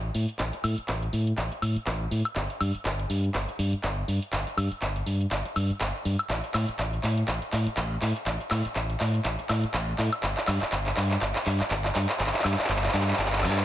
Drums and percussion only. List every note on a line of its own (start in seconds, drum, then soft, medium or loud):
0.15 open hi-hat loud
0.29 closed hi-hat soft
0.39 kick loud
0.39 clap medium
0.39 closed hi-hat medium
0.53 closed hi-hat soft
0.64 open hi-hat loud
0.64 high woodblock medium
0.78 closed hi-hat soft
0.88 kick loud
0.88 clap medium
0.88 closed hi-hat medium
1.02 closed hi-hat soft
1.13 open hi-hat loud
1.27 closed hi-hat soft
1.38 kick loud
1.38 clap medium
1.38 closed hi-hat medium
1.52 closed hi-hat soft
1.62 open hi-hat loud
1.62 high woodblock medium
1.76 closed hi-hat soft
1.87 kick loud
1.87 clap medium
1.87 closed hi-hat medium
2.11 open hi-hat loud
2.25 closed hi-hat soft
2.25 high woodblock medium
2.36 kick loud
2.36 clap medium
2.36 closed hi-hat medium
2.50 closed hi-hat soft
2.61 open hi-hat loud
2.61 high woodblock medium
2.75 closed hi-hat soft
2.85 kick loud
2.85 clap medium
2.85 closed hi-hat medium
2.99 closed hi-hat soft
3.10 open hi-hat loud
3.24 closed hi-hat soft
3.34 kick loud
3.34 clap medium
3.34 closed hi-hat medium
3.49 closed hi-hat soft
3.59 open hi-hat loud
3.73 closed hi-hat soft
3.84 kick loud
3.84 clap medium
3.84 closed hi-hat medium
4.08 open hi-hat loud
4.22 closed hi-hat soft
4.33 kick loud
4.33 clap medium
4.33 closed hi-hat medium
4.47 closed hi-hat soft
4.58 open hi-hat loud
4.58 high woodblock medium
4.72 closed hi-hat soft
4.82 kick loud
4.82 clap medium
4.82 closed hi-hat medium
4.96 closed hi-hat soft
5.07 open hi-hat loud
5.21 closed hi-hat soft
5.31 kick loud
5.31 clap medium
5.31 closed hi-hat medium
5.45 closed hi-hat soft
5.56 open hi-hat loud
5.56 high woodblock medium
5.70 closed hi-hat soft
5.80 kick loud
5.80 clap medium
5.80 closed hi-hat medium
6.05 open hi-hat loud
6.19 closed hi-hat soft
6.19 high woodblock medium
6.30 kick loud
6.30 clap medium
6.30 closed hi-hat medium
6.44 closed hi-hat soft
6.54 clap medium
6.54 open hi-hat loud
6.54 high woodblock medium
6.69 closed hi-hat soft
6.79 kick loud
6.79 clap medium
6.79 closed hi-hat medium
6.93 closed hi-hat soft
7.04 clap medium
7.04 open hi-hat loud
7.18 closed hi-hat soft
7.28 kick loud
7.28 clap medium
7.28 closed hi-hat medium
7.42 closed hi-hat soft
7.53 clap medium
7.53 open hi-hat loud
7.67 closed hi-hat soft
7.77 kick loud
7.77 clap medium
7.77 closed hi-hat medium
8.02 clap medium
8.02 open hi-hat loud
8.16 closed hi-hat soft
8.26 kick loud
8.26 clap medium
8.26 closed hi-hat medium
8.40 closed hi-hat soft
8.51 clap medium
8.51 open hi-hat loud
8.51 high woodblock medium
8.65 closed hi-hat soft
8.76 kick loud
8.76 clap medium
8.76 closed hi-hat medium
8.90 closed hi-hat soft
9.00 clap medium
9.00 open hi-hat loud
9.14 closed hi-hat soft
9.25 kick loud
9.25 clap medium
9.25 closed hi-hat medium
9.39 closed hi-hat soft
9.49 clap medium
9.49 open hi-hat loud
9.49 high woodblock medium
9.63 closed hi-hat soft
9.74 kick loud
9.74 clap medium
9.74 closed hi-hat medium
9.99 clap medium
9.99 open hi-hat loud
10.13 closed hi-hat soft
10.13 high woodblock medium
10.23 kick loud
10.23 clap medium
10.23 closed hi-hat medium
10.37 clap medium
10.37 closed hi-hat soft
10.48 clap medium
10.48 open hi-hat loud
10.48 high woodblock medium
10.62 clap medium
10.62 closed hi-hat soft
10.72 kick loud
10.72 clap medium
10.72 closed hi-hat medium
10.86 clap medium
10.86 closed hi-hat soft
10.97 clap medium
10.97 open hi-hat loud
11.11 clap medium
11.11 closed hi-hat soft
11.21 kick loud
11.21 clap medium
11.21 closed hi-hat medium
11.36 clap medium
11.36 closed hi-hat soft
11.46 clap medium
11.46 open hi-hat medium
11.60 clap medium
11.60 closed hi-hat soft
11.71 kick loud
11.71 clap loud
11.71 closed hi-hat loud
11.85 clap medium
11.95 clap loud
11.95 open hi-hat loud
12.09 clap medium
12.09 closed hi-hat soft
12.20 kick loud
12.20 clap loud
12.20 closed hi-hat loud
12.27 clap medium
12.34 clap medium
12.34 closed hi-hat soft
12.39 clap medium
12.44 clap loud
12.44 open hi-hat loud
12.44 high woodblock medium
12.51 clap medium
12.58 kick medium
12.58 clap medium
12.58 closed hi-hat soft
12.64 clap loud
12.69 kick loud
12.69 clap loud
12.69 closed hi-hat loud
12.76 clap medium
12.83 clap medium
12.83 closed hi-hat soft
12.88 clap medium
12.94 clap loud
12.94 open hi-hat loud
13.01 clap loud
13.08 clap medium
13.08 closed hi-hat soft
13.13 clap medium
13.18 kick loud
13.18 clap loud
13.18 closed hi-hat loud
13.26 clap loud
13.33 clap medium
13.33 closed hi-hat soft
13.38 clap loud
13.43 clap loud
13.43 open hi-hat loud
13.43 high woodblock medium
13.50 clap loud
13.57 clap medium
13.57 closed hi-hat soft